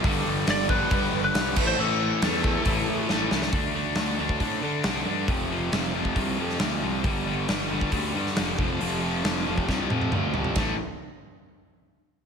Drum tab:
CC |--------------x-|----------------|----------------|----------------|
RD |----------------|----------------|----------------|----------------|
HH |o---o---o---o---|----o---o-------|o---o---o---o---|o---o---o---o---|
SD |----o-------o---|----o-------o-oo|----o-------o---|----o------oo---|
T1 |----------------|----------------|----------------|----------------|
T2 |----------------|----------------|----------------|----------------|
FT |----------------|----------------|----------------|----------------|
BD |o-----o-o-----o-|------o-o-------|o------oo-------|o------oo-------|

CC |----------------|----------------|----------------|
RD |----------------|----------------|b---------------|
HH |o---o---o---o---|o---o-----------|----------------|
SD |----o------oo---|----o---o-------|o---------------|
T1 |----------------|----------oo----|----------------|
T2 |----------------|------------o---|----------------|
FT |----------------|--------------oo|----------------|
BD |o------oo-----o-|-------oo-------|o---------------|